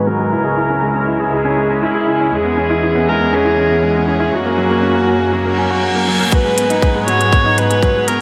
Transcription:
Already playing: string section G#2 D#3 B3 F#4, felt piano F#3 G#3 B3 D#4
0.07 felt piano F#3, viola A#4
0.19 felt piano G#3
0.32 string section C#2 C#3 G#3 E4, felt piano E4
0.44 felt piano G#4
0.57 felt piano E4
0.70 felt piano C#4
0.82 felt piano G#3
0.95 felt piano C#4
1.07 felt piano E4
1.20 felt piano G#4
1.32 felt piano G#4, viola G#4
1.45 felt piano C#4
1.57 felt piano G#3
1.69 felt piano C#4
1.82 felt piano E4, viola E4
1.95 felt piano G#4
2.07 felt piano E4
2.20 felt piano C#4
2.32 string section E2 E3 C#4, felt piano G#3, viola G#4
2.45 felt piano B3
2.57 felt piano C#4
2.70 felt piano E4
2.83 felt piano E4
2.95 felt piano B3
3.08 felt piano G#3, viola A#4
3.20 felt piano B3
3.33 felt piano C#4, viola G#4
3.45 felt piano E4
3.58 felt piano C#4
3.70 felt piano B3
3.83 felt piano G#3
3.95 felt piano B3
4.07 felt piano C#4, viola G#4
4.20 felt piano E4
4.33 string section F#2 F#3 A#3, felt piano F#4, viola F#4
4.45 felt piano A#3
4.57 felt piano F#3
4.70 felt piano A#3
4.83 felt piano C#4
4.95 felt piano F#4
5.07 felt piano C#4
5.20 felt piano A#3
5.33 felt piano F#3, reverse cymbal
5.45 felt piano A#3
5.58 felt piano C#4
5.71 felt piano F#4
5.83 felt piano F#4
5.95 felt piano A#3
6.08 felt piano F#3
6.19 felt piano A#3
6.32 string section G#2 F#3 B3 G#4, felt piano F#3, viola B4, kick, closed hi-hat
6.45 felt piano G#3
6.58 felt piano B3, closed hi-hat
6.70 felt piano D#4, closed hi-hat
6.82 felt piano D#4, kick, closed hi-hat
6.95 felt piano G#3
7.07 felt piano F#3, viola C#5, closed hi-hat
7.20 felt piano G#3, closed hi-hat
7.33 felt piano B3, kick, closed hi-hat
7.45 felt piano D#4
7.57 felt piano B3, viola B4, closed hi-hat
7.70 felt piano G#3, closed hi-hat
7.83 felt piano F#3, kick, closed hi-hat
7.95 felt piano G#3
8.08 felt piano B3, viola A#4, closed hi-hat

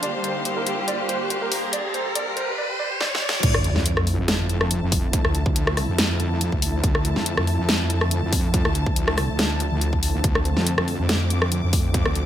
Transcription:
Already playing: supersaw synth D3, string section D4 C5 F5, riser
0.03 supersaw synth G3 A#3 G4, string section G4, grand piano D5, closed hi-hat
0.14 grand piano G4
0.24 grand piano C5, closed hi-hat
0.36 grand piano G4
0.45 grand piano G4, closed hi-hat
0.57 grand piano A#4
0.67 grand piano G4, closed hi-hat
0.88 grand piano D5, closed hi-hat
0.99 grand piano G4
1.09 grand piano C5, closed hi-hat
1.21 grand piano G4
1.30 grand piano G4, closed hi-hat
1.42 grand piano A#4
1.50 grand piano G4, string section A#5, open hi-hat
1.63 grand piano G4
1.73 grand piano D5, closed hi-hat
1.84 grand piano G4
1.94 grand piano C5, closed hi-hat
2.06 grand piano G4
2.15 grand piano D5, closed hi-hat
2.27 grand piano G4
2.37 grand piano C5, closed hi-hat
2.48 grand piano G4
2.58 grand piano D5
2.69 grand piano G4
2.79 grand piano D5
2.91 grand piano G4
3.01 grand piano D5, snare
3.12 grand piano G4, snare
3.22 grand piano D5
3.29 snare
3.33 grand piano G4
3.43 wobble bass D2, supersaw synth D3 F3 A3 E4, kick, closed hi-hat, crash, sub drop
3.54 cross-stick
3.64 closed hi-hat
3.76 wobble bass F2, snare
3.86 closed hi-hat
3.97 wobble bass F2, cross-stick
4.07 open hi-hat
4.18 wobble bass F2
4.27 string section A5, snare, closed hi-hat
4.49 closed hi-hat
4.61 cross-stick
4.71 closed hi-hat
4.82 wobble bass F2
4.92 kick, open hi-hat
5.13 kick, closed hi-hat
5.25 wobble bass D2, cross-stick
5.35 closed hi-hat
5.46 wobble bass D2, kick
5.56 closed hi-hat
5.67 cross-stick
5.77 cross-stick, open hi-hat
5.89 wobble bass F2
5.98 snare, closed hi-hat
6.20 closed hi-hat
6.41 closed hi-hat
6.52 wobble bass D2, kick
6.62 open hi-hat
6.84 wobble bass D2, kick, closed hi-hat
6.95 cross-stick
7.05 closed hi-hat
7.16 wobble bass F2, snare
7.26 closed hi-hat
7.37 wobble bass F2, cross-stick
7.47 open hi-hat
7.59 wobble bass F2
7.69 snare, closed hi-hat
7.90 closed hi-hat
8.01 cross-stick
8.11 closed hi-hat
8.23 wobble bass F2
8.33 kick, open hi-hat
8.54 kick, closed hi-hat
8.65 wobble bass D2, cross-stick
8.75 closed hi-hat
8.86 wobble bass D2, kick
8.96 closed hi-hat
9.08 cross-stick
9.18 cross-stick, open hi-hat
9.29 wobble bass D2
9.39 snare, closed hi-hat
9.60 closed hi-hat
9.72 wobble bass D2
9.81 closed hi-hat
9.93 kick
10.03 open hi-hat
10.14 wobble bass D2
10.24 wobble bass D2, supersaw synth C4, kick, closed hi-hat
10.35 cross-stick
10.45 closed hi-hat
10.57 wobble bass F2, snare
10.67 closed hi-hat
10.78 wobble bass F2, cross-stick
10.88 open hi-hat
10.99 wobble bass F2
11.08 string section D6, snare, closed hi-hat
11.30 closed hi-hat
11.42 cross-stick
11.52 closed hi-hat
11.63 wobble bass F2
11.73 kick, open hi-hat
11.94 kick, closed hi-hat
12.06 wobble bass D2, cross-stick
12.15 closed hi-hat

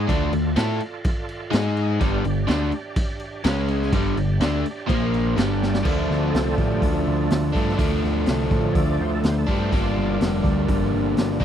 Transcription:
0.08 picked electric bass D2, overdriven electric guitar D3 A3 D4, tonewheel organ F4 A4 D5, kick, crash
0.33 picked electric bass D2, overdriven electric guitar D3 A3, crash
0.56 picked electric bass A2, overdriven electric guitar A3 E4 A4, snare, crash
0.80 crash
1.04 kick, crash
1.29 crash
1.51 picked electric bass G#2, overdriven electric guitar G#3 D#4 G#4, tonewheel organ D#4 G#4 D#5, snare, crash
1.77 crash
1.99 picked electric bass G1, overdriven electric guitar G2 D3 G3, tonewheel organ D4 G4 D5, kick, crash
2.25 picked electric bass G1, overdriven electric guitar G2 D3, crash
2.48 picked electric bass D2, overdriven electric guitar D3 A3 D4, snare, crash
2.72 crash
2.96 kick, crash
3.20 crash
3.43 picked electric bass C#2, overdriven electric guitar C#3 G#3 C#4, tonewheel organ C#4 G#4 C#5, snare, crash
3.68 crash
3.82 snare
3.92 picked electric bass G1, overdriven electric guitar G2 D3 G3, tonewheel organ D4 G4 D5, kick, crash
4.16 picked electric bass G1, overdriven electric guitar G2 D3, crash
4.40 picked electric bass D2, overdriven electric guitar D3 A3 D4, snare, crash
4.66 crash
4.87 picked electric bass A#1, overdriven electric guitar A#2 F3 A#3, tonewheel organ F4 A#4 F5, kick, crash
5.14 crash
5.36 picked electric bass G1, overdriven electric guitar G2 D3 G3, tonewheel organ D4 G4 D5, snare, crash
5.63 snare
5.74 snare
5.83 picked electric bass D2, overdriven electric guitar D3 F3 A3 D4, tonewheel organ F3 A3 D4, kick, crash
6.10 picked electric bass D2, snare
6.30 picked electric bass C2, tonewheel organ G#4
6.34 tonewheel organ C4 A4, snare, open hi-hat
6.58 picked electric bass A2, tonewheel organ D4 G4, kick
6.82 picked electric bass D2, tonewheel organ D4, kick, open hi-hat
7.07 picked electric bass D2
7.30 picked electric bass D2, snare, open hi-hat
7.53 picked electric bass G2, overdriven electric guitar D3 F3 A3 D4, kick
7.69 snare
7.78 picked electric bass D2, overdriven electric guitar D3 F3 A3 D4, kick, open hi-hat
8.03 picked electric bass D2, snare
8.26 picked electric bass C2, snare, open hi-hat
8.51 picked electric bass A2, tonewheel organ F3 A3 D4, kick
8.73 picked electric bass D2, tonewheel organ C#5, kick, open hi-hat
8.77 tonewheel organ D5
9.00 picked electric bass D2, tonewheel organ C5
9.15 tonewheel organ A4
9.23 picked electric bass D2, tonewheel organ C5, snare, open hi-hat
9.38 tonewheel organ A4
9.46 picked electric bass G2, overdriven electric guitar D3 F3 A3 D4, tonewheel organ G4, kick
9.60 tonewheel organ C5
9.72 picked electric bass G1, overdriven electric guitar G2 D3 G3 A#3 D4, tonewheel organ F4 D5, kick, open hi-hat
9.97 picked electric bass G1
10.21 picked electric bass F1, snare, open hi-hat
10.43 picked electric bass D2, tonewheel organ G3 A#3 D4, kick
10.69 picked electric bass G1, kick, open hi-hat
10.94 picked electric bass G1
11.17 picked electric bass G1, tonewheel organ G3 A#3 D4, snare, open hi-hat
11.40 picked electric bass C2, overdriven electric guitar D3 G3 A#3 D4, kick

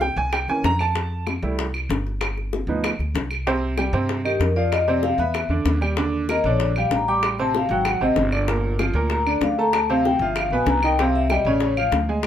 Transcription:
Already playing: upright bass C2
0.01 upright piano G5, high bongo
0.16 upright bass C2, upright piano G#5
0.33 upright piano G5, high bongo, claves
0.48 upright bass E2, upright piano E3 A#3 C#4 G#5, high bongo
0.64 upright bass F2, upright piano A#5, high bongo, low bongo
0.79 upright piano A5, high bongo, claves
0.95 high bongo
1.27 high bongo, claves
1.43 upright bass C2, upright piano G3 A3 E4, high bongo
1.59 high bongo
1.74 high bongo, claves
1.89 upright bass G1, high bongo, low bongo
2.07 high bongo
2.21 high bongo, claves
2.37 high bongo
2.53 high bongo
2.67 upright bass D2, upright piano F3 B3 D#4
2.84 high bongo, claves
2.99 upright bass D2, high bongo
3.15 upright bass C2, high bongo, low bongo
3.31 high bongo, claves
3.47 upright piano C3 C4 C5, high bongo
3.78 upright piano G3 G4 G5, high bongo, claves
3.93 upright bass G2, upright piano C3 C4 C5
4.09 high bongo
4.25 upright piano D#3 D#4 D#5, vibraphone G4, claves
4.40 upright bass F2, vibraphone A#4, high bongo, low bongo
4.56 upright piano F3 F4 F5, vibraphone D5
4.72 vibraphone D#5, high bongo, claves
4.88 upright piano C3 C4 C5, vibraphone D5, high bongo
5.03 vibraphone F5, high bongo
5.18 upright bass E2, upright piano B3 B4 B5, vibraphone E5, high bongo
5.34 high bongo, claves
5.49 upright bass E2, upright piano D3 D4 D5
5.65 upright bass D#2, high bongo, low bongo
5.81 upright piano G3 G4 G5, high bongo, claves
5.97 upright piano D3 D4 D5, high bongo
6.29 upright piano A#3 A#4 A#5, vibraphone D#5, high bongo, claves
6.44 upright bass A#1, upright piano D3 D4 D5, vibraphone C#5
6.60 vibraphone D5, high bongo
6.76 upright piano G3 G4 G5, vibraphone F5, claves
6.91 upright bass A1, high bongo, low bongo
6.95 vibraphone A#5
7.08 upright piano G3 G4 G5, vibraphone D6
7.23 vibraphone C6, high bongo, claves
7.39 upright piano C3 C4 C5, vibraphone A5, high bongo
7.55 vibraphone F5, high bongo
7.69 upright bass G#1, upright piano F#3 F#4 F#5, vibraphone G5, high bongo
7.85 vibraphone F#5, high bongo, claves
8.01 upright bass G#1, upright piano C3 C4 C5, vibraphone D#5
8.16 upright bass G1, high bongo, low bongo
8.32 upright piano D3 D4 D5, high bongo, claves
8.48 upright piano A#2 A#3 A#4, high bongo
8.79 upright piano F3 F4 F5, high bongo, claves
8.94 upright bass D2, upright piano A#2 A#3 A#4
9.10 vibraphone A#5, high bongo
9.26 upright piano D3 D4 D5, vibraphone D5, claves
9.41 upright bass D2, vibraphone F5, high bongo, low bongo
9.58 upright piano A3 A4 A5, vibraphone A#5
9.73 vibraphone A5, high bongo, claves
9.89 upright piano C3 C4 C5, vibraphone F5, high bongo
10.05 vibraphone G5, high bongo
10.19 upright bass G1, upright piano F3 F4 F5, vibraphone E5, high bongo
10.36 vibraphone F5, high bongo, claves
10.50 upright bass A#1, upright piano B2 B3 B4, vibraphone G#5
10.66 upright bass C2, vibraphone A#5, high bongo, low bongo
10.83 upright piano D#3 D#4 D#5, vibraphone G5, high bongo, claves
10.99 upright piano C3 C4 C5, vibraphone F5, high bongo
11.16 vibraphone E5
11.30 upright piano G3 G4 G5, vibraphone D#5, high bongo, claves
11.45 upright bass A1, upright piano C#3 C#4 C#5, vibraphone D5
11.60 vibraphone C#5, high bongo
11.77 upright piano F3 F4 F5, vibraphone F5, claves
11.92 upright bass D2, high bongo, low bongo
12.09 upright piano G#3 G#4 G#5
12.23 high bongo

